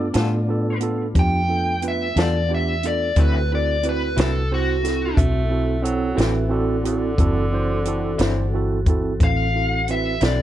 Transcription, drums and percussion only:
0.14 snare, closed hi-hat
0.81 closed hi-hat
1.15 kick, closed hi-hat
1.82 closed hi-hat
2.17 snare, closed hi-hat
2.83 closed hi-hat
3.16 kick, closed hi-hat
3.83 closed hi-hat
4.17 snare, closed hi-hat
4.85 snare, closed hi-hat
5.17 kick, closed hi-hat
5.85 closed hi-hat
6.18 snare, closed hi-hat
6.85 closed hi-hat
7.18 kick, closed hi-hat
7.85 closed hi-hat
8.19 snare, closed hi-hat
8.86 kick, closed hi-hat
9.20 kick, closed hi-hat
9.88 closed hi-hat
10.21 snare, closed hi-hat

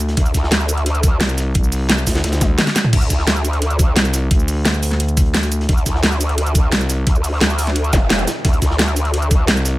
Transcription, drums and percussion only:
0.00 closed hi-hat
0.08 snare, closed hi-hat
0.17 kick, closed hi-hat
0.26 closed hi-hat, shaker
0.34 kick, snare, closed hi-hat, shaker
0.43 snare
0.51 snare, closed hi-hat
0.60 shaker
0.68 closed hi-hat, shaker
0.77 closed hi-hat
0.86 closed hi-hat
0.95 closed hi-hat, shaker
1.03 kick, closed hi-hat, shaker
1.20 snare, closed hi-hat
1.29 closed hi-hat, shaker
1.38 snare, closed hi-hat, shaker
1.54 kick, closed hi-hat
1.64 shaker
1.72 closed hi-hat, open hi-hat, shaker
1.89 snare, closed hi-hat
1.98 shaker
2.07 kick, snare, closed hi-hat, open hi-hat, shaker
2.15 snare, closed hi-hat
2.24 snare, closed hi-hat
2.32 snare, closed hi-hat, shaker
2.41 kick, snare, closed hi-hat, high tom, shaker
2.58 snare, closed hi-hat, mid tom
2.67 snare, closed hi-hat, shaker
2.75 snare, closed hi-hat, shaker
2.84 mid tom
2.93 kick, closed hi-hat, crash
3.01 closed hi-hat, shaker
3.10 kick, snare, closed hi-hat, shaker
3.19 snare
3.27 snare, closed hi-hat
3.36 shaker
3.44 closed hi-hat, shaker
3.53 closed hi-hat
3.62 closed hi-hat
3.70 closed hi-hat, shaker
3.79 kick, closed hi-hat, shaker
3.96 snare, closed hi-hat
4.05 closed hi-hat, shaker
4.13 snare, closed hi-hat, shaker
4.31 kick, closed hi-hat
4.40 shaker
4.48 closed hi-hat, open hi-hat, shaker
4.65 snare, closed hi-hat
4.74 shaker
4.83 closed hi-hat, open hi-hat, shaker
4.91 snare, closed hi-hat
5.00 closed hi-hat
5.09 closed hi-hat, shaker
5.17 kick, closed hi-hat, shaker
5.25 closed hi-hat
5.34 snare, closed hi-hat
5.43 closed hi-hat, shaker
5.52 closed hi-hat, shaker
5.60 snare, closed hi-hat
5.69 kick, closed hi-hat
5.77 closed hi-hat, shaker
5.86 kick, snare, closed hi-hat, shaker
5.95 snare
6.03 snare, closed hi-hat
6.12 shaker
6.21 closed hi-hat, shaker
6.29 closed hi-hat
6.38 closed hi-hat
6.46 closed hi-hat, shaker
6.55 kick, closed hi-hat, shaker
6.72 snare, closed hi-hat
6.81 closed hi-hat, shaker
6.90 snare, closed hi-hat, shaker
7.07 kick, closed hi-hat
7.15 shaker
7.24 closed hi-hat, open hi-hat, shaker
7.41 snare, closed hi-hat
7.50 shaker
7.59 closed hi-hat, open hi-hat, shaker
7.67 snare, closed hi-hat
7.75 closed hi-hat
7.84 closed hi-hat, shaker
7.93 kick, snare, closed hi-hat, shaker
8.10 snare, closed hi-hat
8.19 closed hi-hat, shaker
8.27 snare, closed hi-hat, shaker
8.45 kick, closed hi-hat
8.53 closed hi-hat, shaker
8.62 kick, snare, closed hi-hat, shaker
8.70 snare
8.79 snare, closed hi-hat
8.88 shaker
8.96 closed hi-hat, shaker
9.05 closed hi-hat
9.14 closed hi-hat
9.22 closed hi-hat, shaker
9.31 kick, closed hi-hat, shaker
9.47 snare, closed hi-hat
9.57 closed hi-hat, shaker
9.65 snare, closed hi-hat, shaker

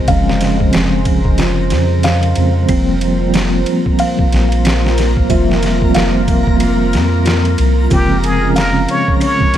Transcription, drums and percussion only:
0.08 kick, ride
0.29 snare
0.41 snare, ride
0.60 kick
0.73 snare, ride
1.05 kick, ride
1.25 kick
1.38 snare, ride
1.70 snare, ride
2.03 snare, ride
2.23 ride
2.35 ride
2.69 kick, ride
3.01 ride
3.34 snare, ride
3.66 ride
3.86 kick
3.99 ride
4.19 kick
4.32 snare, ride
4.52 ride
4.65 snare, ride
4.86 snare
4.98 snare, ride
5.17 kick
5.30 kick, ride
5.51 snare
5.63 snare, ride
5.82 kick
5.94 snare, ride
6.28 kick, ride
6.47 kick
6.60 ride
6.93 snare, ride
7.26 snare, ride
7.45 ride
7.58 ride
7.91 kick, ride
8.24 ride
8.56 snare, ride
8.89 ride
9.08 kick
9.21 ride
9.41 kick
9.54 ride

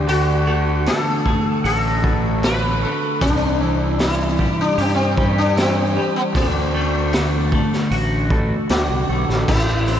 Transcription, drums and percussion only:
0.08 open hi-hat
0.86 snare, open hi-hat
1.26 kick
1.65 open hi-hat
2.04 kick
2.43 snare, open hi-hat
3.21 kick, open hi-hat
3.99 snare, open hi-hat
4.39 kick
4.78 open hi-hat
5.17 kick
5.57 snare, open hi-hat
6.35 kick, open hi-hat
7.13 snare, open hi-hat
7.52 kick
7.73 snare
7.91 open hi-hat
8.30 kick
8.69 snare, open hi-hat
9.30 snare
9.48 kick, crash
9.87 open hi-hat

